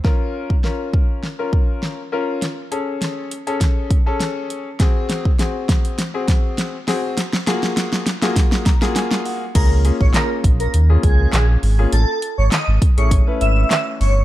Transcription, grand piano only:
\new Staff \with { instrumentName = "Grand piano" } { \time 4/4 \key des \major \tempo 4 = 101 << { r1 | r1 | r1 | r2 r8 bes''8 aes''8 ges''8 |
r1 | r1 | } \\ { <des' f' bes'>8. r16 <des' f' bes'>4 r16 <des' f' bes'>4 r16 <des' f' bes'>8 | r8 <cis' gis' a'>4 r16 <cis' gis' a'>8. r16 <cis' gis' a'>4 r16 | <c' ges' aes'>8. r16 <c' ges' aes'>4 r16 <c' ges' aes'>4 r16 <c' ges' aes'>8 | r8 <bes f' ges' aes'>4 r16 <bes f' ges' aes'>8. r16 <bes f' ges' aes'>4 r16 |
<bes des' f' aes'>8 <bes des' f' aes'>8 <bes des' f' aes'>4 r16 <bes des' f' aes'>4~ <bes des' f' aes'>16 r16 <bes des' f' aes'>16 | r4. r16 <a cis' e' gis'>8 <a cis' e' ces''>4. r16 | } >> }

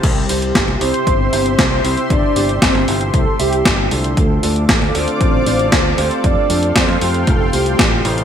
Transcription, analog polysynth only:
\new Staff \with { instrumentName = "Analog polysynth" } { \time 4/4 \key c \mixolydian \tempo 4 = 116 <g g'>4. <c' c''>2 <c' c''>8 | <d' d''>4 <c' c''>4 <a a'>8 <g g'>4 r8 | <a a'>4. <c' c''>2 <c' c''>8 | <d' d''>4 <c' c''>4 <a a'>8 <g g'>4 r8 | }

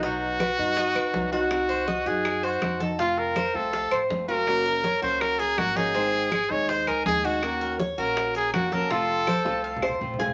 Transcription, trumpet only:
\new Staff \with { instrumentName = "Trumpet" } { \time 4/4 \key f \phrygian \tempo 4 = 162 fis'2.~ fis'8 fis'8~ | fis'4. aes'4 ges'4 r8 | f'8 bes'4 a'4. r8 bes'8~ | bes'4. c''8 bes'8 aes'8 ges'8 aes'8~ |
aes'4. des''8 c''8 bes'8 aes'8 ges'8~ | ges'4 r8 bes'4 aes'8 ges'8 bes'8 | a'2. r4 | }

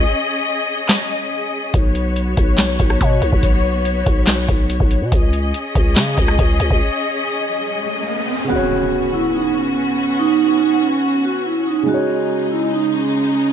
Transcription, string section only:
\new Staff \with { instrumentName = "String section" } { \time 4/4 \key b \mixolydian \tempo 4 = 142 <cis' gis' dis''>1 | <b fis' cis''>1~ | <b fis' cis''>1 | <cis' gis' dis''>1~ |
<cis' gis' dis''>1 | <b cis' fis'>1~ | <b cis' fis'>1 | <cis gis dis'>1 | }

